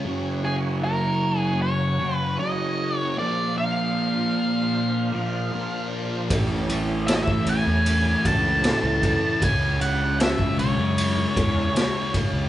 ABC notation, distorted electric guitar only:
X:1
M:4/4
L:1/8
Q:1/4=77
K:F#dor
V:1 name="Distorted electric guitar" clef=bass
[F,,C,F,]4- [F,,C,F,] [F,,C,F,] [F,,C,F,]2 | [_B,,=F,_B,]4- [B,,F,B,] [B,,F,B,] [B,,F,B,]2 | [A,,E,A,]4- [A,,E,A,] [A,,E,A,] [A,,E,A,]2 | [C,G,C]4- [C,G,C] [C,G,C] [C,G,C]2 |]